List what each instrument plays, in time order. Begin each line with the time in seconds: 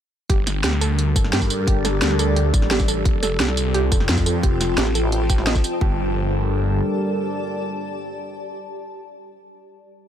0.30 detuned saw bass G1, analog synth pad G3 D4 A4 A#4, synth arpeggio sound G4, ambient pad G4, kick, closed hi-hat
0.47 snare, closed hi-hat, tambourine
0.54 ambient pad D5
0.64 detuned saw bass D2, synth arpeggio sound G4, snare, closed hi-hat
0.73 snare
0.81 synth arpeggio sound A4, closed hi-hat, tambourine
0.99 closed hi-hat
1.16 detuned saw bass G1, synth arpeggio sound A4, kick, closed hi-hat, tambourine
1.25 snare
1.33 detuned saw bass G2, synth arpeggio sound G4, snare, closed hi-hat
1.42 kick, tambourine
1.50 open hi-hat, tambourine
1.67 detuned saw bass G1, synth arpeggio sound G4, kick, closed hi-hat
1.85 synth arpeggio sound A4, snare, closed hi-hat, tambourine
2.02 detuned saw bass D2, snare, closed hi-hat
2.11 snare
2.19 synth arpeggio sound A4, closed hi-hat, tambourine
2.36 synth arpeggio sound G4, closed hi-hat
2.54 detuned saw bass A1, kick, closed hi-hat, tambourine
2.62 snare
2.71 synth arpeggio sound G4, snare, closed hi-hat
2.80 kick, tambourine
2.88 synth arpeggio sound A4, open hi-hat, tambourine
3.05 detuned saw bass F1, analog synth pad C4 F4, ambient pad F4, kick, closed hi-hat
3.22 synth arpeggio sound A4, ambient pad C5 G5, snare, closed hi-hat, tambourine
3.27 ambient pad A5
3.40 detuned saw bass C2, synth arpeggio sound G4, snare, closed hi-hat
3.49 snare
3.57 closed hi-hat, tambourine
3.74 synth arpeggio sound G4, closed hi-hat
3.92 detuned saw bass F1, synth arpeggio sound A4, kick, closed hi-hat, tambourine
4.00 snare
4.09 detuned saw bass F2, snare, closed hi-hat
4.18 kick, tambourine
4.26 synth arpeggio sound A4, open hi-hat, tambourine
4.43 detuned saw bass F1, synth arpeggio sound G4, kick, closed hi-hat
4.61 snare, closed hi-hat, tambourine
4.78 wobble bass A1, synth arpeggio sound G4, snare, closed hi-hat
4.87 snare
4.95 synth arpeggio sound A4, closed hi-hat, tambourine
5.12 closed hi-hat
5.30 synth arpeggio sound G4, kick, closed hi-hat, tambourine
5.38 snare
5.47 synth arpeggio sound D#5, snare, closed hi-hat
5.55 kick, tambourine
5.64 open hi-hat, tambourine
5.81 detuned saw bass G1, analog synth pad G3 D4 A4 A#4, synth arpeggio sound G4, ambient pad G4, kick
5.87 ambient pad D5
5.92 ambient pad A5